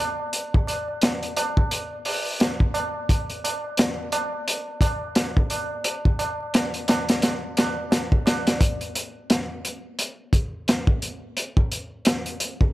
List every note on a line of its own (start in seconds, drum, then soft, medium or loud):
0.20 tabla na soft
0.33 closed hi-hat medium
0.33 tabla na soft
0.54 kick medium
0.54 tabla na soft
0.67 closed hi-hat medium
0.67 tabla na medium
0.88 tabla na soft
1.02 snare loud
1.02 closed hi-hat medium
1.02 tabla na soft
1.22 closed hi-hat soft
1.22 tabla na soft
1.37 closed hi-hat medium
1.37 tabla na medium
1.57 kick loud
1.57 tabla na soft
1.71 closed hi-hat medium
1.71 tabla na soft
1.93 tabla na soft
2.05 open hi-hat medium
2.05 tabla na medium
2.26 tabla na soft
2.40 snare loud
2.40 closed hi-hat medium
2.40 tabla na soft
2.60 kick medium
2.60 tabla na soft
2.74 closed hi-hat medium
2.74 tabla na medium
2.95 tabla na soft
3.09 kick loud
3.09 closed hi-hat medium
3.09 tabla na soft
3.29 closed hi-hat soft
3.29 tabla na soft
3.44 closed hi-hat medium
3.44 tabla na medium
3.64 tabla na soft
3.77 snare loud
3.77 closed hi-hat medium
3.77 tabla na soft
3.98 tabla na soft
4.12 closed hi-hat medium
4.12 tabla na loud
4.33 tabla na soft
4.47 closed hi-hat medium
4.47 tabla na soft
4.68 tabla na soft
4.81 kick medium
4.81 closed hi-hat medium
4.81 tabla na medium
5.02 tabla na soft
5.15 snare medium
5.15 closed hi-hat medium
5.15 tabla na soft
5.36 kick loud
5.36 tabla na soft
5.50 closed hi-hat medium
5.50 tabla na medium
5.71 tabla na soft
5.84 closed hi-hat medium
5.84 tabla na soft
6.05 kick medium
6.05 tabla na soft
6.19 closed hi-hat medium
6.19 tabla na medium
6.41 tabla na soft
6.54 snare loud
6.54 closed hi-hat medium
6.54 tabla na medium
6.74 closed hi-hat soft
6.74 tabla na soft
6.88 snare loud
6.88 closed hi-hat medium
6.88 tabla na medium
7.09 snare medium
7.09 closed hi-hat medium
7.09 tabla na soft
7.22 snare medium
7.22 closed hi-hat medium
7.22 tabla na soft
7.43 tabla na soft
7.57 snare medium
7.57 closed hi-hat medium
7.57 tabla na medium
7.77 tabla na soft
7.91 snare loud
7.91 closed hi-hat medium
7.91 tabla na soft
8.12 kick medium
8.12 tabla na soft
8.26 snare loud
8.26 closed hi-hat medium
8.26 tabla na medium
8.47 snare medium
8.47 closed hi-hat medium
8.47 tabla na soft
8.61 kick loud
8.61 closed hi-hat medium
8.81 closed hi-hat soft
8.95 closed hi-hat medium
9.30 snare loud
9.30 closed hi-hat medium
9.65 closed hi-hat medium
9.99 closed hi-hat medium
10.33 kick medium
10.33 closed hi-hat medium
10.68 snare loud
10.68 closed hi-hat medium
10.87 kick loud
11.02 closed hi-hat medium
11.37 closed hi-hat medium
11.57 kick loud
11.72 closed hi-hat medium
12.05 snare loud
12.05 closed hi-hat medium
12.26 closed hi-hat soft
12.40 closed hi-hat medium
12.61 kick medium